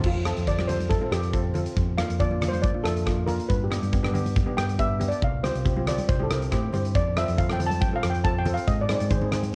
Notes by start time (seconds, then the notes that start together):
0.03 F2 F4, kick, crash
0.25 C4 F4 A4, cross-stick, closed hi-hat, high conga
0.37 F2, closed hi-hat
0.47 C4 F4 A4 D5, kick, closed hi-hat, low conga
0.58 C4 F4 G4, cross-stick, high conga
0.67 C4 F4 A4 C5, closed hi-hat, low conga
0.79 closed hi-hat, high conga
0.89 A4, kick, closed hi-hat, high conga
1.01 C4 F4 A4, high conga
1.11 F2 C4 F4 G4 A4, cross-stick, closed hi-hat
1.23 closed hi-hat
1.33 C4 F4 A4, kick, closed hi-hat
1.54 C4 F4 A4, closed hi-hat, low conga
1.66 closed hi-hat
1.77 F2, kick, closed hi-hat
1.98 A#3 D4 F4 F5, cross-stick, closed hi-hat, high conga
2.09 F2, closed hi-hat
2.19 A#3 D4 F4 D5, kick, closed hi-hat, low conga
2.31 A#3 D4 F4, high conga
2.41 A#3 D4 F4, cross-stick, closed hi-hat, low conga
2.48 C5, high conga
2.53 closed hi-hat
2.62 D5, kick, closed hi-hat, high conga
2.74 A#3 D4 F4, high conga
2.84 F2 A#3 D4 F4 A4, cross-stick, closed hi-hat
2.96 closed hi-hat
3.06 A#3 D4 F4, kick, cross-stick, closed hi-hat
3.26 A#3 D4 F4 A#4, closed hi-hat, low conga
3.40 closed hi-hat
3.49 G2 B4, kick, closed hi-hat
3.64 G4
3.71 B3 D4 G4, cross-stick, closed hi-hat, high conga
3.82 G2, closed hi-hat
3.92 B3 D4 G4, kick, closed hi-hat, low conga
4.03 B3 D4 G4, cross-stick, high conga
4.14 B3 D4 G4, closed hi-hat, low conga
4.26 closed hi-hat, high conga
4.36 kick, closed hi-hat, high conga
4.46 B3 D4 G4, high conga
4.57 G2 B3 D4 G4 G5, cross-stick, closed hi-hat
4.69 closed hi-hat
4.79 B3 D4 G4 E5, kick, closed hi-hat
5.00 B3 D4 G4, closed hi-hat, low conga
5.09 D5, closed hi-hat
5.22 C2 F5, kick, closed hi-hat
5.43 C4 F4 G4 C5, cross-stick, closed hi-hat, high conga, low conga
5.55 C2, closed hi-hat
5.65 C4 F4 G4, kick, closed hi-hat, low conga
5.76 C4 F4 G4, high conga
5.87 C4 F4 G4 D5, cross-stick, closed hi-hat, low conga
5.98 closed hi-hat, high conga
6.08 C2 C5, kick, closed hi-hat, high conga
6.19 C4 E4 G4 A4, high conga
6.30 C2 C4 E4 A#4, cross-stick, closed hi-hat
6.42 closed hi-hat
6.51 A2 C4 E4 G4, kick, cross-stick, closed hi-hat
6.73 G2 C4 E4 G4 C5, closed hi-hat, low conga
6.85 closed hi-hat
6.95 F2 D5, kick, closed hi-hat
7.16 C4 F4 A4 E5, cross-stick, closed hi-hat, high conga
7.28 F2, closed hi-hat
7.37 C4 F4 A4 F5, kick, closed hi-hat, low conga
7.49 C4 F4 A4 G5, cross-stick, high conga
7.59 C4 F4 A4, closed hi-hat, low conga
7.66 A5, high conga
7.71 closed hi-hat
7.80 G5, kick, closed hi-hat, high conga
7.91 C4 F4 A4, high conga
7.95 F5
8.03 F2 C4 F4 A4, cross-stick, closed hi-hat
8.10 G5
8.14 closed hi-hat
8.24 C4 F4 A4 A5, kick, closed hi-hat
8.38 G5
8.45 C4 F4 A4, closed hi-hat, low conga
8.54 F5, closed hi-hat
8.67 G#2 D#5, kick, closed hi-hat
8.81 D5
8.89 C4 D#4 G#4, cross-stick, closed hi-hat, high conga
8.95 D5
9.00 G#2, closed hi-hat
9.10 C4 D#4 G#4 C5, kick, closed hi-hat, low conga
9.21 C4 D#4 G#4, high conga
9.31 C4 D#4 G#4, cross-stick, closed hi-hat, low conga
9.43 closed hi-hat, high conga